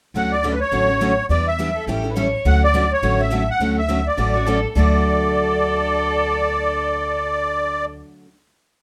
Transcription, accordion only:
0.16 F#5
0.32 D5
0.52 B4
0.60 C#5
1.30 D5
1.47 E5
2.47 F#5
2.64 D5
2.92 C#5
3.21 E5
3.50 F#5
3.78 E5
4.07 D5
4.77 D5

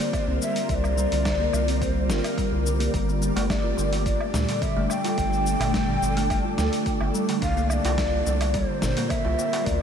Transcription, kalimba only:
0.28 C4
0.97 G3
1.12 D3
1.26 D3
1.40 A#3
1.68 C4
2.38 G3
2.52 D3
2.66 D3
2.80 A#3
2.94 G3
3.08 D3
3.22 D3
3.37 A3
3.64 F4
4.34 G3
4.49 D3
4.62 D3
4.76 A3
5.04 F4
5.74 G3
5.89 D3
6.02 D3
6.17 A3
6.45 F4
7.14 G3
7.29 D3
7.42 D3
7.57 A#3
7.85 F4
8.54 G3
8.69 D3
8.82 D3
8.97 A#3
9.25 F4

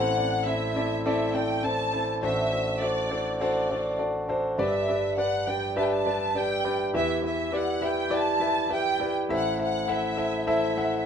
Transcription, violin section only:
Already playing: F#5
0.46 E5
1.06 E5
1.35 G5
1.65 A5
2.23 E5
2.81 D5
3.40 D5
4.60 E5
5.19 F#5
5.48 G5
5.77 A5
5.82 G5
5.91 A5
6.38 G5
6.97 E5
7.27 E5
7.56 F#5
7.86 G5
8.15 A5
8.74 G5
9.34 F#5
9.63 F#5
9.91 E5
10.49 E5

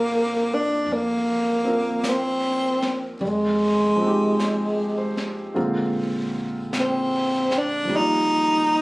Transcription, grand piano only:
Already playing: A#2 F3 C4 D4 A4
1.64 C4 D4 F4 A#4
3.96 F3 G#3
4.02 C4 D#4
4.07 G4
4.39 G#4
4.98 C5
5.54 D3 G#3 A#3 C4 F4
7.85 F3 G3
7.90 A#3 D5
7.96 F4

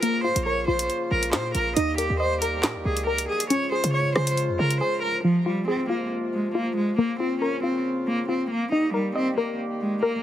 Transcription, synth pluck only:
0.03 A#3
0.24 F4
0.46 A#4
0.68 F4
1.33 F4
1.76 D#4
1.98 A#4
2.20 D#5
2.42 A#4
3.07 A#4
3.50 C#4
3.72 G#4
3.94 C#5
4.16 G#4
4.81 G#4
5.24 F3
5.46 F4
5.68 G#4
5.90 F4
6.55 F4
6.98 A#3
7.20 F4
7.42 A#4
7.63 F4
8.29 F4
8.72 D#4
8.94 A#4
9.15 D#5
9.38 A#4
10.03 A#4

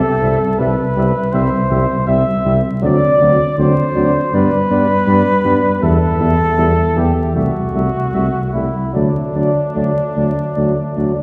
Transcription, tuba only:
0.23 C2
0.60 C2
0.97 C2
1.34 C2
1.71 C2
2.09 C2
2.46 C2
2.83 D2
3.21 D2
3.58 D2
3.95 D2
4.33 G2
4.70 G2
5.07 G2
5.45 G2
5.82 E2
6.20 E2
6.58 E2
6.97 E2
7.35 C2
7.74 C2
8.14 C2
8.55 C2
8.95 D2
9.35 D2
9.76 D2
10.16 D2
10.57 D2
10.97 D2

